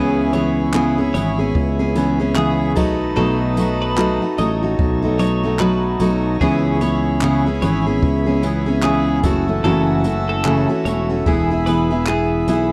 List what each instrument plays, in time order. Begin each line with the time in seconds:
Already playing: fretless electric bass C#2, steel-string acoustic guitar C#3 E3 B3 C#4 G#4, harmonium E4 C#5 B5, clean electric guitar G#4
0.33 steel-string acoustic guitar E3 B3 C#4 G#4, clean electric guitar C#5, tambourine
0.74 steel-string acoustic guitar C#3 E3 B3 C#4 G#4, clap
0.98 steel-string acoustic guitar B3 C#4 G#4
1.14 fretless electric bass G#1, steel-string acoustic guitar E3 B3 C#4 G#4, clean electric guitar C#5, tambourine
1.39 steel-string acoustic guitar B3 C#4 G#4
1.55 fretless electric bass C#2, kick
1.79 steel-string acoustic guitar B3 C#4 G#4
1.95 steel-string acoustic guitar E3 B3 C#4 G#4, tambourine
2.20 steel-string acoustic guitar B3 C#4 G#4
2.35 steel-string acoustic guitar C#3 E3 B3 C#4 G#4, clean electric guitar G#4, clap
2.75 fretless electric bass B1, steel-string acoustic guitar F#3 A3 D#4 F#4, harmonium D#4 B4 A5, kick, tambourine, crash
3.16 fretless electric bass B1, steel-string acoustic guitar B2 F#3 A3 D#4 F#4, clean electric guitar A4
3.57 steel-string acoustic guitar F#3 A3 D#4 F#4, tambourine
3.82 clean electric guitar B4
3.97 steel-string acoustic guitar B2 F#3 A3 D#4 F#4, clap
4.22 steel-string acoustic guitar A3 D#4 F#4
4.37 fretless electric bass A1, steel-string acoustic guitar F#3 A3 D#4 F#4, harmonium C#5, clean electric guitar D#5, tambourine
4.63 steel-string acoustic guitar A3 D#4 F#4
4.79 fretless electric bass B1, kick
5.03 steel-string acoustic guitar A3 D#4 F#4
5.19 steel-string acoustic guitar F#3 A3 D#4 F#4, clean electric guitar C#5, tambourine
5.43 steel-string acoustic guitar A3 D#4 F#4
5.59 steel-string acoustic guitar B2 F#3 A3 D#4 F#4, clean electric guitar B4, clap
6.00 fretless electric bass B1, steel-string acoustic guitar F#3 A3 D#4 F#4, tambourine
6.40 fretless electric bass C#2, steel-string acoustic guitar C#3 E3 B3 C#4 G#4, harmonium E4 B5, clean electric guitar G#4, kick
6.81 steel-string acoustic guitar E3 B3 C#4 G#4, clean electric guitar C#5, tambourine
7.21 steel-string acoustic guitar C#3 E3 B3 C#4 G#4, clap
7.46 steel-string acoustic guitar B3 C#4 G#4
7.62 fretless electric bass G#1, steel-string acoustic guitar E3 B3 C#4 G#4, clean electric guitar C#5, tambourine
7.86 steel-string acoustic guitar B3 C#4 G#4
8.02 fretless electric bass C#2, kick
8.26 steel-string acoustic guitar B3 C#4 G#4
8.42 steel-string acoustic guitar E3 B3 C#4 G#4, tambourine
8.66 steel-string acoustic guitar B3 C#4 G#4
8.82 steel-string acoustic guitar C#3 E3 B3 C#4 G#4, clean electric guitar G#4, clap
9.23 fretless electric bass F#1, steel-string acoustic guitar E3 A3 C#4 F#4, harmonium F#4 E5 A5, kick, tambourine
9.48 steel-string acoustic guitar E3 A3 C#4 F#4
9.64 fretless electric bass F#1, steel-string acoustic guitar F#2 C#3 E3 A3 C#4 F#4, clean electric guitar A4
10.04 steel-string acoustic guitar E3 A3 C#4 F#4, tambourine
10.29 clean electric guitar A4
10.45 steel-string acoustic guitar F#2 C#3 E3 A3 C#4 F#4, clap
10.69 steel-string acoustic guitar E3 A3 C#4 F#4
10.85 fretless electric bass E1, steel-string acoustic guitar E3 A3 C#4 F#4, clean electric guitar C#5, tambourine
11.10 steel-string acoustic guitar E3 A3 C#4 F#4
11.26 fretless electric bass E1, steel-string acoustic guitar E3 B3 E4 G#4, harmonium G#4 B5, kick
11.50 steel-string acoustic guitar B3 E4 G#4
11.66 steel-string acoustic guitar E3 B3 E4 G#4, clean electric guitar B4, tambourine
11.91 steel-string acoustic guitar B3 E4 G#4
12.06 steel-string acoustic guitar E3 B3 E4 G#4, clean electric guitar G#4, clap
12.48 fretless electric bass B1, steel-string acoustic guitar E3 B3 E4 G#4, tambourine